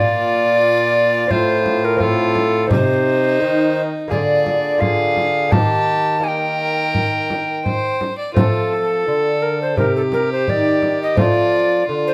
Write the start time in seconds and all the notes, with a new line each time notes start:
Already playing: A#2 A#3 F4 D5
1.27 A2 C4 F4 C5, frame drum
1.66 frame drum
1.85 A#4
1.97 C4 F4, frame drum
2.02 A4
2.35 frame drum
2.67 C4 D#4 G4, frame drum
2.71 C3 C5
3.41 D#3
4.08 D3 A#3 F4 G#4 D5, frame drum
4.46 frame drum
4.78 A#3 F4 G#4 F5, frame drum
5.17 frame drum
5.49 D#3 A#3 D#4 G4 A5, frame drum
6.20 A#3 D#4 G4 A#4 G#5
6.28 G5
6.95 frame drum
7.30 frame drum
7.66 C5, frame drum
8.01 frame drum
8.19 D5
8.34 F3 A3 C4 F4 A4, frame drum
8.73 A4
9.07 D3
9.42 A#4
9.62 C5
9.76 C3 C4 D#4 G4 A#4, frame drum
9.96 A4
10.12 A#4, frame drum
10.32 C5
10.48 D#3 D5, frame drum
10.82 frame drum
11.03 D#5
11.15 F3 A3 C4 F4, frame drum
11.20 D5
11.87 D3 F4
12.07 C5